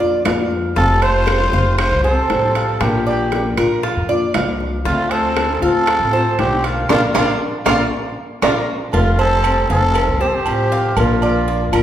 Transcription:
Already playing: upright bass F2
0.00 nylon-string guitar A#3 D4 F4, cuban tres D5, high bongo
0.24 upright bass F2, nylon-string guitar F3 A#3 D4 F4, cuban tres F5, high bongo, low bongo, high timbale, low timbale, claves
0.51 high bongo
0.75 upright bass F1, nylon-string guitar F3 G3 C4 G4, violin section C4, cuban tres F4, muted trumpet A4, high bongo
1.02 violin section F4, cuban tres C5, muted trumpet C5, high timbale
1.26 nylon-string guitar F3 G3 C4 G4, high bongo, high timbale, claves
1.52 upright bass F1, nylon-string guitar G3 C4 G4, cuban tres F5, high bongo
1.78 violin section F4, muted trumpet C5, muted nylon-string guitar stroke, high bongo, high timbale, claves
1.92 upright bass C2
2.03 nylon-string guitar G3 C4 G4, violin section C4, muted trumpet A4, cuban tres C5, high bongo
2.29 upright bass A1, nylon-string guitar F3 G3 C4 G4, high bongo, low bongo, high timbale
2.55 cuban tres F5, high bongo, high timbale
2.80 upright bass A#1, nylon-string guitar F3 A#3 D4 F4, violin section A#3, muted trumpet G4, high bongo, high timbale, claves
3.06 violin section A#3, muted trumpet G4, cuban tres D5
3.32 nylon-string guitar F3 A#3 D4 F4, high bongo, high timbale
3.57 upright bass A#1, nylon-string guitar A#3 D4 F4, cuban tres A#4, high bongo, high timbale, claves
3.83 cuban tres F4, muted nylon-string guitar stroke, high bongo
3.96 upright bass F2
4.09 nylon-string guitar A#3 D4 F4, cuban tres D5, high bongo
4.34 upright bass C2, nylon-string guitar F3 A#3 D4 F4, cuban tres F5, high bongo, low bongo, high timbale, low timbale, claves
4.60 high bongo
4.85 upright bass D2, nylon-string guitar D3 A3 C4 F4, violin section A3, cuban tres F4, muted trumpet F4, high bongo
5.11 violin section C4, muted trumpet A4, cuban tres C5, high timbale
5.36 nylon-string guitar D3 A3 C4 F4, high bongo, high timbale, claves
5.62 upright bass D2, nylon-string guitar A3 C4 F4, violin section C4, muted trumpet A4, cuban tres F5, high bongo
5.87 muted nylon-string guitar stroke, high bongo, high timbale, claves
6.00 upright bass A1
6.13 nylon-string guitar A3 C4 F4, cuban tres C5, high bongo
6.38 upright bass B1, nylon-string guitar D3 A3 C4 F4, violin section C4, muted trumpet G4, high bongo, low bongo, high timbale
6.64 violin section A#3, muted trumpet F4, cuban tres F5, high bongo, high timbale
6.89 upright bass A#1, nylon-string guitar F3 A#3 D4, violin section A#3 D4, muted trumpet F4, cuban tres A#4 D5 F5, high bongo, high timbale, claves
7.15 upright bass A#1, nylon-string guitar F3 A#3 D4, violin section A#3 D4, muted trumpet F4, cuban tres A#4 D5 F5, high bongo, high timbale, claves
7.65 upright bass A#1, nylon-string guitar F3 A#3 D4, violin section A#3 D4, muted trumpet F4, cuban tres A#4 D5 F5, high bongo, high timbale, claves
8.41 upright bass A#1, nylon-string guitar F3 A#3 D4, violin section A#3 D4, muted trumpet F4, cuban tres A#4 D5 F5, high bongo, high timbale, claves
8.92 upright bass F1, nylon-string guitar F3 G3 C4 G4, violin section A3, cuban tres F4, muted trumpet F4, cowbell, low agogo
9.19 violin section C4, muted trumpet A4, cuban tres C5, low agogo
9.44 nylon-string guitar F3 G3 C4 G4, cowbell, low agogo, claves
9.69 upright bass F1, nylon-string guitar G3 C4 G4, violin section C4, muted trumpet A4, cuban tres F5, cowbell
9.95 muted nylon-string guitar stroke, cowbell, low agogo, claves
10.08 upright bass C2
10.20 nylon-string guitar G3 C4 G4, violin section A#3, muted trumpet G4, cuban tres C5
10.28 violin section C4, muted trumpet A4
10.35 violin section C4, muted trumpet G4
10.46 upright bass A1, nylon-string guitar F3 G3 C4 G4, cowbell, low agogo
10.72 cuban tres F5, cowbell
10.96 upright bass A#1, nylon-string guitar F3 A#3 D4 F4, violin section A#3, muted trumpet F4, cowbell, low agogo, claves
11.22 violin section A#3, muted trumpet F4, cuban tres D5, low agogo
11.47 nylon-string guitar F3 A#3 D4 F4, cowbell
11.72 upright bass A#1, nylon-string guitar A#3 D4 F4, cuban tres A#4, cowbell, low agogo, claves

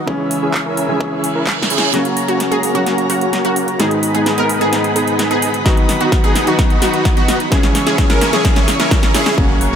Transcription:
0.06 grand piano C#3 E3 G#3 C#4, analog synth pad E3 C#4 G#4 E5, supersaw synth C#4 E4 G#4, kick
0.31 open hi-hat
0.42 supersaw synth C#4 E4 G#4
0.54 kick, clap
0.66 supersaw synth C#4 E4 A#4
0.77 open hi-hat
0.88 grand piano C#3 E3 G#3 C#4, supersaw synth C#4 E4 G#4
1.00 kick, reverse cymbal
1.24 open hi-hat
1.35 supersaw synth C#4 E4 A#4
1.47 kick, snare, clap
1.63 snare
1.70 supersaw synth C#4 E4 G#4, open hi-hat
1.78 snare
1.92 grand piano C#3 F#3 A#3 C#4, supersaw synth A#3 C#4 F#4, analog synth pad F#4 A#4 C#5 A#5, synth pluck F#4, snare, closed hi-hat, riser
2.05 closed hi-hat
2.17 sub bass F#1, open hi-hat
2.28 supersaw synth A#3 C#4 F#4, synth pluck F#4, closed hi-hat
2.40 snare, closed hi-hat
2.52 supersaw synth A#3 C#4 G#4, synth pluck G#4, closed hi-hat
2.63 open hi-hat
2.74 grand piano C#3 F#3 A#3 C#4, supersaw synth A#3 C#4 F#4, synth pluck F#4, closed hi-hat
2.87 snare, closed hi-hat
2.98 closed hi-hat
3.10 sub bass F#1, supersaw synth A#3 C#4 F#4, synth pluck F#4, open hi-hat
3.21 closed hi-hat
3.33 sub bass F#1, snare, closed hi-hat
3.45 supersaw synth A#3 C#4 F#4, synth pluck F#4, closed hi-hat
3.56 sub bass F#1, open hi-hat
3.68 sub bass F#1, closed hi-hat
3.78 grand piano G#2 D#3 G#3 B3 D#4, supersaw synth B3 D#4 G#4, analog synth pad G#4 B4 D#5 B5, synth pluck G#4, snare, closed hi-hat
3.91 closed hi-hat
4.03 open hi-hat
4.14 supersaw synth B3 D#4 G#4, synth pluck G#4, closed hi-hat
4.26 snare, closed hi-hat
4.38 supersaw synth B3 D#4 A#4, synth pluck A#4, closed hi-hat
4.49 sub bass G#1, open hi-hat
4.60 grand piano G#2 D#3 G#3 B3 D#4, supersaw synth B3 D#4 G#4, synth pluck G#4, closed hi-hat
4.73 sub bass G#1, snare, closed hi-hat
4.84 closed hi-hat
4.96 supersaw synth B3 D#4 G#4, synth pluck G#4, open hi-hat
5.08 closed hi-hat
5.19 snare, closed hi-hat
5.31 supersaw synth B3 D#4 G#4, synth pluck G#4, closed hi-hat
5.42 sub bass G#1, open hi-hat
5.54 sub bass G#1, closed hi-hat
5.65 grand piano D#3 F#3 B3 D#4, supersaw synth B3 D#4 F#4, synth pluck F#4, analog synth pad F#4, kick, snare, closed hi-hat
5.77 closed hi-hat
5.89 snare, open hi-hat
6.01 sub bass B1, supersaw synth B3 D#4 F#4, synth pluck F#4, closed hi-hat
6.12 kick, snare, closed hi-hat
6.24 supersaw synth B3 D#4 G#4, synth pluck G#4, closed hi-hat
6.35 snare, open hi-hat
6.46 grand piano D#3 F#3 B3 D#4, supersaw synth B3 D#4 F#4, synth pluck F#4, closed hi-hat
6.59 kick, snare, closed hi-hat
6.70 closed hi-hat
6.82 supersaw synth B3 D#4 F#4, synth pluck F#4, snare, open hi-hat
6.94 closed hi-hat
7.05 kick, snare, closed hi-hat
7.17 supersaw synth B3 D#4 F#4, synth pluck F#4, closed hi-hat
7.28 sub bass B1, snare, open hi-hat
7.40 sub bass B1, closed hi-hat
7.50 sub bass C#2, grand piano C#3 E3 G#3 C#4, supersaw synth C#4 E4 G#4, synth pluck G#4, analog synth pad G#4 C#5 E5 C#6, kick, snare, closed hi-hat
7.63 snare, closed hi-hat
7.75 sub bass C#2, snare, open hi-hat
7.87 supersaw synth C#4 E4 G#4, synth pluck G#4, snare, closed hi-hat
7.98 kick, snare, closed hi-hat
8.10 supersaw synth C#4 E4 A#4, synth pluck A#4, snare, closed hi-hat
8.21 snare, open hi-hat
8.32 grand piano C#3 E3 G#3 C#4, supersaw synth C#4 E4 G#4, synth pluck G#4, snare, closed hi-hat
8.45 kick, snare, closed hi-hat
8.56 snare, closed hi-hat
8.68 sub bass C#2, snare, open hi-hat
8.80 supersaw synth C#4 E4 A#4, synth pluck A#4, snare, closed hi-hat
8.91 kick, snare, closed hi-hat
9.03 snare, closed hi-hat
9.15 supersaw synth C#4 E4 G#4, synth pluck G#4, snare, open hi-hat
9.26 snare, closed hi-hat
9.37 sub bass F#1, grand piano C#3 F#3 A#3 C#4, supersaw synth A#3 C#4 F#4, analog synth pad A#4 C#5 F#5 C#6, kick, impact
9.61 sub bass F#1, open hi-hat

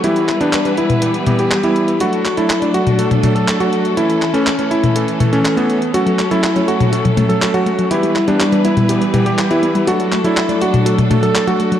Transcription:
0.04 electric grand piano E3 G3 B3 E4 G4, string section G3 B3 E4 B4, closed hi-hat
0.16 closed hi-hat
0.28 clap, closed hi-hat
0.41 electric grand piano E3 G3 B3 D4 G4, closed hi-hat
0.53 clap, closed hi-hat
0.65 electric grand piano E3 G3 B3 B4, closed hi-hat
0.77 electric grand piano E4, closed hi-hat
0.90 closed hi-hat, high tom
1.02 electric grand piano E3 G3 B3 G4, closed hi-hat
1.14 closed hi-hat
1.27 electric grand piano E3 G3 B3 G4, closed hi-hat, high tom
1.39 electric grand piano G4, closed hi-hat
1.51 clap, closed hi-hat
1.63 electric grand piano E3 G3 B3 E4 G4, closed hi-hat
1.76 closed hi-hat
1.88 closed hi-hat
2.00 string section F#3 A3 D4 A4, electric grand piano F#3 A3 D4 F#4 A4, closed hi-hat
2.13 closed hi-hat
2.25 clap, closed hi-hat
2.37 electric grand piano F#3 A3 D4 E4 A4, closed hi-hat
2.50 clap, closed hi-hat
2.62 electric grand piano F#3 A3 D4 D5, closed hi-hat
2.74 electric grand piano F#4, closed hi-hat
2.87 closed hi-hat, high tom
2.99 electric grand piano F#3 A3 D4 A4, closed hi-hat
3.11 closed hi-hat, high tom
3.23 electric grand piano F#3 A3 D4 A4, closed hi-hat, high tom
3.35 electric grand piano A4, closed hi-hat
3.48 clap, closed hi-hat
3.60 electric grand piano F#3 A3 D4 F#4 A4, closed hi-hat
3.73 closed hi-hat
3.85 closed hi-hat
3.97 electric grand piano E3 A3 C#4 E4 A4, string section E3 C#4, closed hi-hat
4.10 closed hi-hat
4.22 clap, closed hi-hat
4.34 electric grand piano E3 A3 C#4 A4, closed hi-hat
4.46 clap, closed hi-hat
4.59 electric grand piano E3 A3 C#4 C#5, closed hi-hat
4.71 electric grand piano E4, closed hi-hat
4.84 closed hi-hat, high tom
4.96 electric grand piano E3 A3 C#4 A4, closed hi-hat
5.08 closed hi-hat
5.20 electric grand piano E3 A3 C#4 A4, closed hi-hat, high tom
5.33 electric grand piano E3 A3 C#4 A4, closed hi-hat
5.45 clap, closed hi-hat
5.57 electric grand piano E3 A3 B3 C#4 A4, closed hi-hat
5.70 closed hi-hat
5.82 closed hi-hat
5.94 electric grand piano F#3 A3 C#4 F#4 A4, string section F#3 A3 A4, synth arpeggio sound F#4, closed hi-hat
6.06 synth arpeggio sound F#3, closed hi-hat
6.19 synth arpeggio sound A3, clap, closed hi-hat
6.31 synth arpeggio sound F#3, electric grand piano F#3 A3 C#4 E4 A4, closed hi-hat
6.43 synth arpeggio sound F#4, clap, closed hi-hat
6.56 synth arpeggio sound F#3, electric grand piano F#3 A3 C#4 C#5, closed hi-hat
6.68 synth arpeggio sound A3, electric grand piano F#4, closed hi-hat
6.80 synth arpeggio sound F#3, closed hi-hat, high tom
6.92 electric grand piano F#3 A3 C#4 A4, synth arpeggio sound F#4, closed hi-hat
7.05 synth arpeggio sound F#3, closed hi-hat, high tom
7.17 electric grand piano F#3 A3 C#4 A4, synth arpeggio sound A3, closed hi-hat, high tom
7.29 synth arpeggio sound F#3, electric grand piano A4, closed hi-hat
7.42 synth arpeggio sound F#4, clap, closed hi-hat
7.54 synth arpeggio sound F#3, electric grand piano F#3 A3 C#4 F#4 A4, closed hi-hat
7.66 synth arpeggio sound A3, closed hi-hat
7.79 synth arpeggio sound F#3, closed hi-hat
7.91 electric grand piano E3 G3 B3 E4 G4, string section G3 B3 E4 B4, synth arpeggio sound G4, closed hi-hat
8.03 synth arpeggio sound G3, closed hi-hat
8.15 synth arpeggio sound B3, clap, closed hi-hat
8.28 electric grand piano E3 G3 B3 D4 G4, synth arpeggio sound G3, closed hi-hat
8.40 synth arpeggio sound G4, clap, closed hi-hat
8.52 electric grand piano E3 G3 B3 B4, synth arpeggio sound G3, closed hi-hat
8.65 synth arpeggio sound B3, electric grand piano E4, closed hi-hat
8.77 synth arpeggio sound G3, closed hi-hat, high tom
8.89 electric grand piano E3 G3 B3 G4, synth arpeggio sound G4, closed hi-hat
9.01 synth arpeggio sound G3, closed hi-hat
9.14 electric grand piano E3 G3 B3 G4, synth arpeggio sound B3, closed hi-hat, high tom
9.26 synth arpeggio sound G3, electric grand piano G4, closed hi-hat
9.38 synth arpeggio sound G4, clap, closed hi-hat
9.50 electric grand piano E3 G3 B3 E4 G4, synth arpeggio sound G3, closed hi-hat
9.63 synth arpeggio sound B3, closed hi-hat
9.75 synth arpeggio sound G3, closed hi-hat
9.87 electric grand piano F#3 A3 D4 F#4 A4, string section F#3 A3 D4 A4, synth arpeggio sound F#4, closed hi-hat
10.00 synth arpeggio sound F#3, closed hi-hat
10.12 synth arpeggio sound A3, clap, closed hi-hat
10.24 synth arpeggio sound F#3, electric grand piano F#3 A3 D4 E4 A4, closed hi-hat
10.37 synth arpeggio sound F#4, clap, closed hi-hat
10.49 synth arpeggio sound F#3, electric grand piano F#3 A3 D4 D5, closed hi-hat
10.61 synth arpeggio sound A3, electric grand piano F#4, closed hi-hat
10.73 synth arpeggio sound F#3, closed hi-hat, high tom
10.86 electric grand piano F#3 A3 D4 A4, synth arpeggio sound F#4, closed hi-hat
10.98 synth arpeggio sound F#3, closed hi-hat, high tom
11.10 electric grand piano F#3 A3 D4 A4, synth arpeggio sound A3, closed hi-hat, high tom
11.23 synth arpeggio sound F#3, electric grand piano A4, closed hi-hat
11.35 synth arpeggio sound F#4, clap, closed hi-hat
11.47 synth arpeggio sound F#3, electric grand piano F#3 A3 D4 F#4 A4, closed hi-hat
11.59 synth arpeggio sound A3, closed hi-hat
11.72 synth arpeggio sound F#3, closed hi-hat

